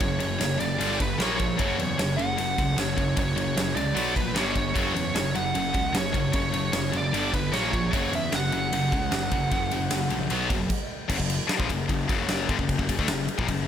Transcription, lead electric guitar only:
0.00 C#5
0.60 D5
1.02 B4
1.21 C#5
1.60 C#5
2.17 F#5
2.80 C#5
3.19 C#5
3.76 D5
4.16 B4
4.38 C#5
4.77 C#5
5.36 F#5
5.97 C#5
6.36 C#5
6.97 D5
7.34 B4
7.52 C#5
7.94 C#5
8.15 E5
8.35 F#5

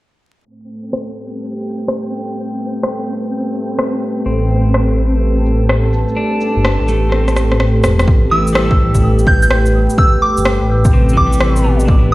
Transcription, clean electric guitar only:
4.26 C4
6.17 D4
6.89 A3
7.09 C4
8.32 E3
8.53 G3
8.66 A3
10.93 C3
11.13 E3
11.26 G3
11.64 B2
11.85 D3
11.99 E3

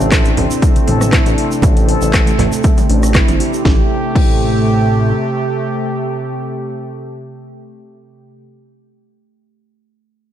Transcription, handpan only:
0.12 E4
0.25 D4
0.50 D4
0.62 A3
0.87 A4
1.13 E4
1.26 D4
1.52 D4
1.63 A3
1.89 A4
2.14 A3
2.27 A3
2.53 A3
2.64 A3
2.90 D4
3.15 E4
3.28 C4
3.40 G4
3.54 G4
3.65 A3
4.16 A3

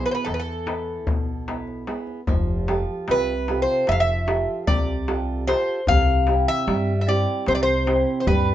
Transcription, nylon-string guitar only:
Already playing: B2 B3 E4 G#4
0.26 E3
0.66 B3 E4 B4
1.07 B2
1.48 B3 E4 B4
1.87 B3 E4 G#4
2.28 F3
2.68 F4 G4 A4
3.09 C3
3.49 F4 G4 A4
3.88 F3
4.27 F4 G4 A4
4.68 C3
5.08 F4 G4 A4
5.47 F4 G4 A4
5.88 C3
6.27 C4 E4 G4
6.67 G3
7.07 C4 E4 G4
7.47 C3
7.86 C4 E4 G4
8.27 G3

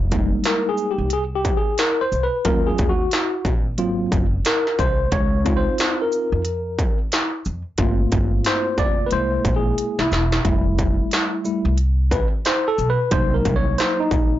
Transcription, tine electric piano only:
0.11 G3 G#3 A#3 D#4
0.46 A#4
0.69 G#4
0.91 G4
1.13 G#4
1.35 G4
1.57 G#4
1.79 A#4
2.01 C5
2.23 B4
2.45 F#3 C#4 F4 A#4
2.67 G#4
2.89 F#4
3.78 F#3 A#3 C4 F4
4.46 A#4
4.80 C5
5.12 C#5
5.44 C4 D#4 F4
5.57 C5
6.02 A#4
7.78 A3 A#3 C4 F4
8.46 C5
8.79 D5
9.06 B4
9.11 G#3 A#3 E4 C5
9.56 G#4
10.01 E4
10.44 G3 A3 E4
11.44 G3 A3 E4
12.12 B4
12.46 C5
12.68 A4
12.90 B4
13.11 F#3 A#3 D#4 C5
13.34 A#4
13.56 C#5
13.78 C5
14.00 D#4

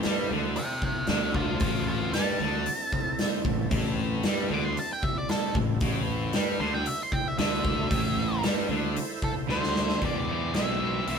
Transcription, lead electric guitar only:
0.57 E5 G5
0.84 E5 G5
1.09 E5 G5
1.35 C5 A5
1.62 C5 A5
1.90 C5 A5
2.14 A5
4.54 D6
4.65 C6
4.80 A5
4.93 G5
5.04 E5
5.18 D5
5.29 A4
6.61 C6
6.74 G5
6.87 E5
7.03 C6
7.13 G5
7.28 E5
7.39 E5
9.24 A4
9.51 C5
10.05 D5
10.56 E5
11.08 E5

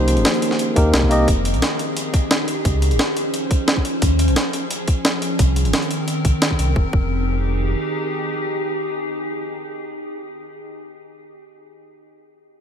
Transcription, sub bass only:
Already playing: C2
0.17 G1
0.76 D#2
0.94 C2
1.28 F1
1.54 C2
2.65 C#2
2.91 G#1
4.02 D#2
4.28 A#1
5.39 C2
5.65 G1
6.25 C2
6.59 C2
6.76 F1
6.93 F1

